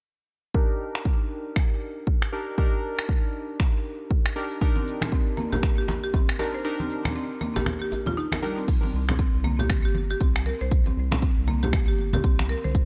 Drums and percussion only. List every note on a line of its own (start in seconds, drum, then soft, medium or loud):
0.55 kick loud
0.95 finger snap medium
1.05 kick loud
1.56 finger snap medium
1.56 kick loud
2.07 kick loud
2.22 finger snap medium
2.58 kick loud
2.99 finger snap medium
3.09 kick loud
3.60 finger snap medium
3.60 kick loud
4.11 kick loud
4.26 finger snap medium
4.61 kick loud
4.61 shaker medium
4.76 muted conga medium
4.76 high conga medium
4.76 shaker soft
4.87 shaker medium
5.02 finger snap medium
5.02 high conga loud
5.02 low conga medium
5.02 shaker soft
5.12 kick loud
5.12 muted conga soft
5.12 djembe tone medium
5.12 shaker soft
5.37 high conga medium
5.37 shaker medium
5.53 muted conga soft
5.53 djembe tone medium
5.53 low conga medium
5.53 shaker soft
5.63 finger snap medium
5.63 kick loud
5.63 shaker medium
5.88 djembe slap loud
5.88 muted conga soft
5.88 djembe tone medium
5.88 high conga medium
5.88 shaker loud
6.04 shaker soft
6.14 kick loud
6.14 high conga medium
6.14 djembe tone medium
6.14 shaker medium
6.29 finger snap medium
6.39 muted conga medium
6.39 djembe slap medium
6.39 shaker medium
6.54 shaker soft
6.64 shaker medium
6.80 muted conga medium
6.80 high conga medium
6.80 shaker soft
6.90 shaker loud
7.05 finger snap medium
7.05 high conga loud
7.05 low conga medium
7.05 shaker soft
7.15 muted conga soft
7.15 shaker medium
7.41 high conga medium
7.41 shaker medium
7.56 djembe slap medium
7.56 muted conga soft
7.56 djembe tone medium
7.56 low conga medium
7.56 shaker soft
7.66 finger snap medium
7.66 high conga loud
7.66 low conga medium
7.66 shaker medium
7.92 muted conga soft
7.92 djembe tone medium
7.92 shaker medium
8.06 high conga loud
8.06 low conga medium
8.06 shaker soft
8.18 shaker medium
8.32 finger snap medium
8.32 djembe slap medium
8.32 high conga loud
8.43 muted conga medium
8.43 shaker medium
8.58 shaker soft
8.68 kick loud
8.68 closed hi-hat medium
8.68 crash loud
8.83 muted conga medium
8.83 high conga medium
9.09 finger snap medium
9.09 high conga medium
9.09 low conga loud
9.18 kick loud
9.18 closed hi-hat medium
9.18 muted conga soft
9.44 mid tom medium
9.44 high conga medium
9.59 closed hi-hat soft
9.59 muted conga soft
9.59 low conga medium
9.70 finger snap medium
9.70 kick loud
9.70 closed hi-hat medium
9.70 mid tom medium
9.95 muted conga soft
9.95 high conga medium
10.10 closed hi-hat soft
10.21 kick loud
10.21 closed hi-hat medium
10.21 high conga medium
10.36 finger snap medium
10.46 muted conga medium
10.71 kick loud
10.71 closed hi-hat medium
10.86 muted conga medium
10.86 high conga medium
11.11 finger snap medium
11.11 high conga loud
11.11 low conga loud
11.22 kick loud
11.22 closed hi-hat medium
11.22 muted conga soft
11.47 mid tom medium
11.47 high conga medium
11.63 closed hi-hat soft
11.63 muted conga medium
11.63 low conga medium
11.73 finger snap medium
11.73 kick loud
11.73 closed hi-hat medium
11.73 high conga loud
11.98 muted conga soft
12.13 closed hi-hat soft
12.13 mid tom medium
12.13 high conga loud
12.13 low conga loud
12.24 kick loud
12.24 closed hi-hat medium
12.39 finger snap medium
12.39 high conga medium
12.49 muted conga medium
12.65 mid tom medium
12.75 kick loud
12.75 closed hi-hat medium